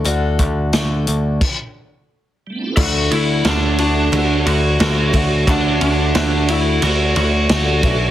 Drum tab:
CC |----x---|x-------|--------|
RD |--------|-xxxxxxx|xxxxxxxx|
HH |xxxx----|--------|--------|
SD |--o-----|--o---o-|--o---o-|
BD |-o--o---|o------o|o------o|